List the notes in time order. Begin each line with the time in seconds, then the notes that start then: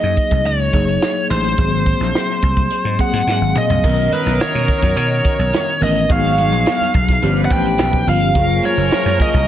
Already playing: F#3 A#3 D#4 G#4 D#5
0.03 F#2
0.17 kick, closed hi-hat
0.31 C2, kick, closed hi-hat
0.45 C#2 C#5, closed hi-hat
0.59 closed hi-hat
0.73 F#1 F#3 A#3 D#4 G#4, kick, closed hi-hat
0.88 closed hi-hat
1.02 snare
1.30 A1 C5, closed hi-hat
1.44 closed hi-hat
1.57 G#1 F#3 A#3 B3 G#4, kick, closed hi-hat
1.65 C4
1.86 kick, closed hi-hat
2.00 A#1, snare, closed hi-hat
2.15 snare
2.30 snare
2.42 C2, kick, closed hi-hat
2.57 kick, closed hi-hat
2.71 closed hi-hat
2.85 G#2
2.98 F#3 A#3 C4 G#4 F#5 C6, kick, closed hi-hat
3.13 G#2, closed hi-hat
3.27 G#2 G#5, snare
3.41 G#1 F5
3.56 D#5, mid tom
3.70 C2, floor tom
3.83 B1 D#3 F#3 B3 C#4 D#4 A#4, kick, crash, muted conga, low conga
3.98 muted conga
4.12 B4, closed hi-hat, high conga
4.26 B1, snare, closed hi-hat
4.40 C#5, muted slap bass stroke, snare, closed hi-hat, muted conga
4.54 B2, closed hi-hat, high conga
4.68 kick, closed hi-hat, high conga, low conga
4.82 F#2, kick, snare, closed hi-hat
4.97 B2 C#5, closed hi-hat, muted conga
5.12 muted conga
5.25 kick, closed hi-hat
5.39 B1, closed hi-hat
5.53 snare, closed hi-hat, muted conga, high conga
5.68 closed hi-hat
5.80 A1 D#3 B3 C#4 A#4 D#5, open hi-hat, low conga
5.96 closed hi-hat
6.08 G#1 F#3 G#3 B3 D#4 F#4 G#4 C#5 F5, kick, closed hi-hat, low conga
6.24 closed hi-hat, muted conga
6.38 closed hi-hat, high conga
6.52 A#1, closed hi-hat
6.66 snare, closed hi-hat
6.81 snare, high conga
6.94 B1, kick, closed hi-hat, high conga, low conga
7.08 kick, snare, closed hi-hat
7.22 G1 F3 B3 C#4 D4 G4 B4, closed hi-hat, muted conga
7.36 closed hi-hat, muted conga
7.45 F#5
7.50 A1 G5, kick, closed hi-hat
7.65 closed hi-hat
7.78 B1, snare, closed hi-hat, muted conga, high conga
7.93 kick, muted conga
8.07 G1 F3 B3 C#4 F4 F5, open hi-hat, low conga
8.21 closed hi-hat
8.35 F#1 F3 F#3 A#3 C#4 F4 G#4 A#4, kick, closed hi-hat, muted conga, low conga
8.63 C#5, closed hi-hat, high conga
8.77 F#1, closed hi-hat
8.91 muted slap bass stroke, snare, closed hi-hat, muted conga
9.05 F#2, muted conga, high conga
9.19 D#5, kick, closed hi-hat, high conga, low conga
9.34 C2, kick, snare, closed hi-hat